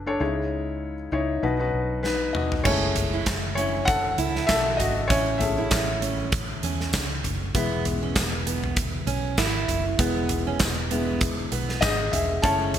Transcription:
0.00 0.16 F#1 medium
0.00 0.06 D4 medium
0.00 0.07 A4 medium
0.00 0.22 B4 medium
0.06 0.17 D4 medium
0.06 0.17 A4 medium
0.06 0.18 C#5 medium
0.20 1.08 C#2 medium
0.20 1.08 C#3 medium
0.20 1.08 G#3 medium
0.20 0.94 D#4 medium
0.20 0.94 E4 medium
0.20 0.94 C#5 medium
1.12 1.41 C#2 medium
1.12 1.41 D#4 medium
1.12 1.43 E4 medium
1.12 1.43 C#5 medium
1.42 1.71 B1 medium
1.42 2.31 B2 medium
1.42 2.31 F#3 medium
1.42 1.56 D#4 medium
1.42 1.57 F#4 medium
1.42 1.57 B4 medium
1.59 2.04 D#4 medium
1.59 2.34 F#4 medium
1.59 2.01 B4 medium
1.73 2.31 B1 medium
2.03 2.33 D#4 medium
2.03 2.35 B4 medium
2.03 snare soft
2.33 2.64 F#4 soft
2.33 2.65 D#5 medium
2.33 mid tom medium
2.52 floor tom medium
2.64 3.23 F#1 loud
2.64 3.53 G#3 medium
2.64 3.53 A3 soft
2.64 2.94 C#4 medium
2.64 3.54 E4 medium
2.64 3.54 C#5 medium
2.64 kick loud
2.64 crash medium
2.96 closed hi-hat medium
2.96 floor tom medium
3.13 3.26 E4 medium
3.26 4.14 F#1 medium
3.26 kick loud
3.26 snare loud
3.26 clap medium
3.26 closed hi-hat medium
3.26 tambourine medium
3.55 3.86 C#4 medium
3.55 3.65 E4 medium
3.55 3.62 C#5 medium
3.55 closed hi-hat medium
3.85 4.45 A4 medium
3.85 4.50 F#5 loud
3.85 kick loud
3.85 closed hi-hat medium
4.18 4.47 C#2 medium
4.18 4.47 E4 medium
4.18 closed hi-hat medium
4.36 snare soft
4.47 4.77 B1 medium
4.47 4.94 F#4 medium
4.47 4.78 A4 medium
4.47 4.79 E5 loud
4.47 kick medium
4.47 snare loud
4.47 clap medium
4.47 closed hi-hat medium
4.47 tambourine medium
4.77 5.08 G#1 medium
4.77 5.08 F#4 medium
4.77 5.10 D#5 medium
4.77 closed hi-hat medium
4.77 floor tom medium
5.08 5.67 A1 loud
5.08 5.39 C#4 loud
5.08 5.39 E4 medium
5.08 5.40 C#5 medium
5.08 kick loud
5.08 closed hi-hat medium
5.38 7.50 A3 medium
5.38 7.50 C#4 soft
5.38 7.51 E4 medium
5.38 7.20 G#4 medium
5.38 7.19 E5 medium
5.38 closed hi-hat medium
5.38 floor tom medium
5.58 5.71 E4 medium
5.71 6.59 A1 loud
5.71 kick loud
5.71 snare loud
5.71 clap medium
5.71 closed hi-hat medium
5.71 tambourine medium
6.02 6.31 C#4 medium
6.02 closed hi-hat medium
6.32 kick loud
6.32 closed hi-hat medium
6.63 6.92 E2 medium
6.63 7.08 C#4 medium
6.63 closed hi-hat medium
6.80 snare soft
6.93 7.22 C#2 loud
6.93 kick loud
6.93 snare medium
6.93 clap medium
6.93 closed hi-hat medium
6.93 tambourine medium
7.24 7.53 F#1 medium
7.24 closed hi-hat medium
7.24 floor tom medium
7.55 8.12 E1 loud
7.55 9.95 G#3 medium
7.55 7.84 B3 medium
7.55 9.95 B3 medium
7.55 9.96 E4 medium
7.55 kick loud
7.55 closed hi-hat medium
7.85 closed hi-hat medium
7.85 floor tom medium
8.03 8.15 C#4 medium
8.16 9.04 E1 loud
8.16 kick loud
8.16 snare loud
8.16 clap medium
8.16 closed hi-hat medium
8.16 tambourine medium
8.46 8.75 B3 medium
8.46 closed hi-hat medium
8.64 floor tom medium
8.76 kick loud
8.76 closed hi-hat medium
9.07 9.36 B1 medium
9.07 9.36 C#4 medium
9.07 closed hi-hat medium
9.38 9.66 G#1 loud
9.38 9.83 E4 medium
9.38 kick medium
9.38 snare medium
9.38 clap medium
9.38 closed hi-hat medium
9.38 tambourine medium
9.68 9.97 F#1 medium
9.68 closed hi-hat medium
9.68 floor tom medium
9.99 10.56 E1 loud
9.99 10.87 G#3 medium
9.99 10.87 B3 medium
9.99 10.28 B3 loud
9.99 10.87 E4 medium
9.99 kick loud
9.99 closed hi-hat medium
10.29 closed hi-hat medium
10.29 floor tom medium
10.47 10.60 C#4 medium
10.59 11.48 E1 medium
10.59 kick loud
10.59 snare loud
10.59 clap medium
10.59 closed hi-hat medium
10.59 tambourine medium
10.91 11.18 G#3 soft
10.91 11.20 B3 medium
10.91 11.19 B3 soft
10.91 11.19 E4 medium
10.91 closed hi-hat medium
11.21 kick loud
11.21 closed hi-hat medium
11.52 11.80 B1 medium
11.52 11.97 B3 medium
11.52 closed hi-hat medium
11.69 snare soft
11.81 12.11 G#1 loud
11.81 12.11 G#4 medium
11.81 12.10 D#5 medium
11.81 kick medium
11.81 snare medium
11.81 clap medium
11.81 closed hi-hat medium
11.81 tambourine medium
12.11 12.41 E1 medium
12.11 12.42 G#4 medium
12.11 12.44 E5 medium
12.11 closed hi-hat medium
12.11 floor tom medium
12.42 12.79 F#1 loud
12.42 12.79 G#3 medium
12.42 12.79 A3 soft
12.42 12.72 C#4 loud
12.42 12.79 E4 medium
12.42 12.79 C#5 medium
12.42 12.79 A5 loud
12.42 kick loud
12.42 closed hi-hat medium
12.74 closed hi-hat medium
12.74 floor tom medium

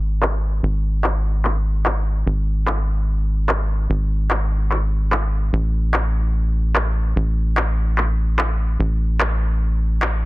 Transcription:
0.00 0.61 G#1 medium
0.22 clap loud
0.63 2.24 G#1 medium
1.04 clap loud
1.45 clap medium
1.86 clap loud
2.26 3.88 G#1 medium
2.67 clap loud
3.49 clap loud
3.90 5.51 G#1 medium
4.31 clap loud
4.71 clap medium
5.12 clap loud
5.53 7.14 A1 medium
5.94 clap loud
6.75 clap loud
7.16 8.78 A1 medium
7.57 clap loud
7.98 clap medium
8.39 clap loud
8.80 10.25 A1 medium
9.20 clap loud
10.02 clap loud

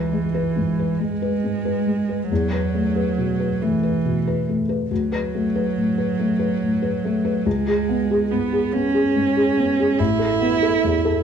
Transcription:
0.00 2.26 C#2 soft
0.00 1.01 E3 soft
0.00 0.25 B4 soft
0.13 0.48 G#3 soft
0.34 0.69 B4 soft
0.56 0.91 G#2 soft
0.79 1.13 B4 soft
0.99 2.30 G#3 medium
0.99 1.35 G#3 soft
1.22 1.56 B4 soft
1.44 1.78 G#2 soft
1.65 2.00 B4 soft
1.87 2.21 G#3 soft
2.09 2.31 B4 soft
2.30 4.87 E2 soft
2.30 3.63 F#3 medium
2.53 2.87 B4 soft
2.74 3.08 A3 soft
2.96 3.30 B4 soft
3.18 3.52 B2 soft
3.40 3.74 B4 soft
3.61 4.48 E3 soft
3.61 3.96 A3 soft
3.83 4.17 B4 soft
4.05 4.39 B2 soft
4.27 4.61 B4 soft
4.49 4.82 A3 soft
4.69 4.90 B4 soft
4.91 7.42 D2 soft
4.91 7.48 F#3 medium
5.12 5.46 B4 soft
5.34 5.67 A3 soft
5.56 5.89 B4 soft
5.77 6.10 A2 soft
5.98 6.31 B4 soft
6.19 6.53 A3 soft
6.39 6.73 B4 soft
6.63 6.96 A2 soft
6.82 7.16 B4 soft
7.04 7.38 A3 soft
7.25 7.46 B4 soft
7.46 9.95 C#2 soft
7.46 8.33 G#3 medium
7.68 8.01 G#4 soft
7.89 8.23 B3 soft
8.11 8.44 G#4 soft
8.31 8.65 G#2 soft
8.31 8.74 B3 medium
8.52 8.86 G#4 soft
8.72 9.07 B3 soft
8.72 10.00 C#4 medium
8.94 9.28 G#4 soft
9.16 9.49 G#2 soft
9.37 9.70 G#4 soft
9.57 9.91 B3 soft
9.80 10.00 G#4 soft
9.99 11.23 A1 soft
9.99 11.23 E4 medium
10.19 10.53 A4 soft
10.41 10.74 B3 soft
10.63 10.96 A4 soft
10.84 11.17 E2 soft
11.05 11.23 A4 soft

